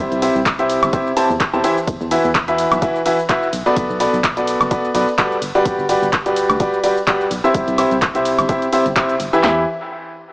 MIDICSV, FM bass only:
0, 0, Header, 1, 2, 480
1, 0, Start_track
1, 0, Key_signature, 1, "minor"
1, 0, Tempo, 472441
1, 1905, Time_signature, 4, 2, 24, 8
1, 10491, End_track
2, 0, Start_track
2, 0, Title_t, "FM bass"
2, 0, Program_c, 0, 39
2, 119, Note_on_c, 0, 36, 103
2, 292, Note_off_c, 0, 36, 0
2, 360, Note_on_c, 0, 36, 88
2, 786, Note_off_c, 0, 36, 0
2, 839, Note_on_c, 0, 31, 89
2, 919, Note_off_c, 0, 31, 0
2, 1319, Note_on_c, 0, 40, 85
2, 1399, Note_off_c, 0, 40, 0
2, 1559, Note_on_c, 0, 40, 81
2, 1639, Note_off_c, 0, 40, 0
2, 1904, Note_on_c, 0, 40, 94
2, 2005, Note_off_c, 0, 40, 0
2, 2039, Note_on_c, 0, 40, 105
2, 2212, Note_off_c, 0, 40, 0
2, 2279, Note_on_c, 0, 40, 91
2, 2705, Note_off_c, 0, 40, 0
2, 2759, Note_on_c, 0, 35, 90
2, 2839, Note_off_c, 0, 35, 0
2, 3585, Note_on_c, 0, 35, 86
2, 3686, Note_off_c, 0, 35, 0
2, 3825, Note_on_c, 0, 35, 101
2, 3926, Note_off_c, 0, 35, 0
2, 3959, Note_on_c, 0, 35, 110
2, 4132, Note_off_c, 0, 35, 0
2, 4199, Note_on_c, 0, 35, 93
2, 4625, Note_off_c, 0, 35, 0
2, 4679, Note_on_c, 0, 30, 88
2, 4758, Note_off_c, 0, 30, 0
2, 5025, Note_on_c, 0, 35, 97
2, 5126, Note_off_c, 0, 35, 0
2, 5505, Note_on_c, 0, 31, 81
2, 5605, Note_off_c, 0, 31, 0
2, 5745, Note_on_c, 0, 31, 98
2, 5846, Note_off_c, 0, 31, 0
2, 5879, Note_on_c, 0, 31, 100
2, 6052, Note_off_c, 0, 31, 0
2, 6119, Note_on_c, 0, 31, 88
2, 6545, Note_off_c, 0, 31, 0
2, 6599, Note_on_c, 0, 38, 86
2, 6678, Note_off_c, 0, 38, 0
2, 7425, Note_on_c, 0, 35, 87
2, 7526, Note_off_c, 0, 35, 0
2, 7665, Note_on_c, 0, 36, 93
2, 7766, Note_off_c, 0, 36, 0
2, 7799, Note_on_c, 0, 36, 110
2, 7972, Note_off_c, 0, 36, 0
2, 8039, Note_on_c, 0, 36, 92
2, 8465, Note_off_c, 0, 36, 0
2, 8519, Note_on_c, 0, 31, 90
2, 8599, Note_off_c, 0, 31, 0
2, 8999, Note_on_c, 0, 31, 90
2, 9078, Note_off_c, 0, 31, 0
2, 9345, Note_on_c, 0, 31, 83
2, 9446, Note_off_c, 0, 31, 0
2, 9585, Note_on_c, 0, 40, 97
2, 9808, Note_off_c, 0, 40, 0
2, 10491, End_track
0, 0, End_of_file